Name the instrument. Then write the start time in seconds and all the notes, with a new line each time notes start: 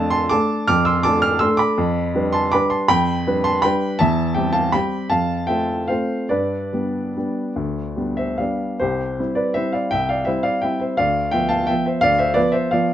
upright piano
Already playing: F2 A3 D4 A4 F5 A5
0.10 A5 C6
0.29 A3 D4 A4 A5 D6
0.68 F2 D6 F6
0.85 C6 E6
1.03 A3 D4 A4 A5 D6
1.22 D6 F6
1.39 A3 D4 A4 C6 E6
1.57 B5 D6
1.78 F2
2.15 G3 D4 B4
2.33 A5 C6
2.52 G3 D4 B4 B5 D6
2.70 A5 C6
2.88 F2 G5 B5
3.27 G3 D4 B4
3.44 A5 C6
3.62 G3 D4 B4 G5 B5
3.99 E2 E5 A5
4.34 G3 C4 G4 E5 G5
4.53 F5 A5
4.72 G3 C4 G4 G5 B5
5.10 F2 F5 A5
5.47 A3 C4 F4 E5 G5
5.88 A3 C4 F4 C5 F5
6.29 G2 B4 D5
6.73 G3 B3 D4
7.17 G3 B3 D4
7.56 D2
7.96 G3 B3 D4
8.17 C5 E5
8.38 G3 B3 D4 D5 F5
8.80 C2 G4 C5
9.19 G3 C4 E4
9.35 B4 D5
9.54 G3 C4 E4 C5 E5
9.72 D5 F5
9.91 C2 E5 G5
10.09 D5 F5
10.25 G3 C4 E4 C5 E5
10.43 D5 F5
10.62 G3 C4 E4 E5 G5
10.80 C5 E5
10.97 D2 D5 F5
11.31 F3 B3 F4 E5 G5
11.49 F5 A5
11.67 F3 B3 F4 E5 G5
11.86 C5 E5
12.01 D2 D5 F5
12.19 C5 E5
12.34 F3 B3 F4 B4 D5
12.52 C5 E5
12.71 F3 B3 F4 D5 F5